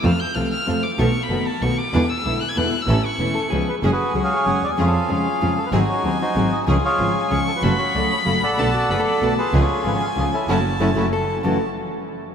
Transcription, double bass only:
0.03 0.17 F2 loud
0.35 0.49 C2 medium
0.67 0.80 F2 medium
0.98 1.12 B1 loud
1.29 1.43 F#1 medium
1.62 1.75 B1 medium
1.94 2.07 E2 loud
2.25 2.38 B1 medium
2.56 2.70 E2 medium
2.87 3.01 A1 loud
3.19 3.33 E1 medium
3.51 3.64 C#2 medium
3.83 3.96 F#1 medium
4.14 4.28 C#2 medium
4.46 4.59 F#1 medium
4.62 4.77 D#2 medium
4.78 4.91 F2 loud
5.10 5.23 F2 medium
5.41 5.55 F2 medium
5.72 5.86 G#1 medium
6.04 6.17 D#2 medium
6.35 6.49 G#1 medium
6.67 6.81 C#2 loud
6.99 7.13 G#1 medium
7.31 7.44 C#2 medium
7.63 7.76 F#1 medium
7.95 8.08 C#2 medium
8.27 8.40 F#1 medium
8.43 8.58 A1 medium
8.58 8.72 B1 loud
8.90 9.03 F#1 medium
9.21 9.35 B1 medium
9.53 9.66 C#2 loud
9.85 9.98 G#1 medium
10.17 10.30 C#2 medium
10.48 10.60 F#1 loud
10.80 10.92 F#1 loud
10.97 11.08 F#1 medium
11.44 11.57 F#1 medium

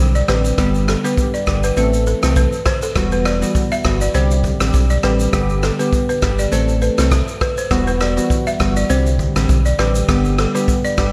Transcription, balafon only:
0.15 0.24 D5 medium
0.28 0.40 B4 medium
0.88 0.99 A4 medium
1.04 1.14 B4 medium
1.34 1.43 D5 medium
1.64 1.73 B4 medium
1.77 1.88 B4 medium
2.07 2.18 A4 medium
2.37 2.48 B4 medium
2.66 2.78 C5 medium
2.83 2.92 A4 medium
3.12 3.21 B4 medium
3.26 3.37 D5 medium
3.72 3.81 E5 medium
4.01 4.11 D5 medium
4.15 4.35 C5 medium
4.90 5.00 D5 medium
5.04 5.15 B4 medium
5.63 5.74 A4 medium
5.79 5.89 B4 medium
6.09 6.18 B4 medium
6.39 6.48 D5 medium
6.52 6.64 C5 medium
6.82 6.93 B4 medium
7.12 7.23 A4 medium
7.41 7.53 B4 medium
7.58 7.67 C5 medium
7.87 7.97 B4 medium
8.01 8.12 D5 medium
8.47 8.56 E5 medium
8.77 8.86 D5 medium
8.90 9.10 C5 medium
9.66 9.75 D5 medium
9.79 9.90 B4 medium
10.39 10.50 A4 medium
10.55 10.64 B4 medium
10.85 10.94 D5 medium

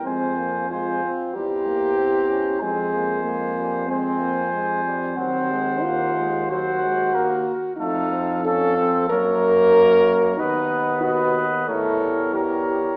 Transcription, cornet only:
0.06 0.70 G#5 soft
0.71 1.12 G#5 soft
1.36 2.58 A#5 soft
2.61 3.87 G#5 soft
3.91 5.15 G#5 medium
5.17 6.46 F#5 medium
6.50 7.48 F#5 medium
7.78 8.41 F5 medium
8.46 9.12 F5 medium
9.11 10.38 C#5 medium
10.39 11.02 D#5 soft
11.03 11.70 D#5 medium
11.68 12.33 C#5 medium
12.34 12.97 C#5 soft

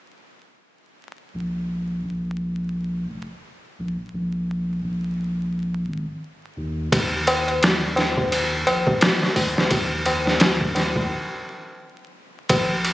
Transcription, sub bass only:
1.34 2.01 A#1 medium
2.04 3.06 A#1 medium
3.08 3.26 F1 medium
3.79 3.97 A#1 medium
4.13 4.80 A#1 medium
4.83 5.85 A#1 medium
5.87 6.06 G#1 medium
6.57 6.88 D#2 medium
6.92 7.59 D#2 medium
7.62 8.64 D#2 medium
8.66 8.84 A#1 medium
9.36 9.54 D#2 medium
9.71 10.38 D#2 loud
10.41 11.11 D#2 loud
12.50 12.93 A#1 medium

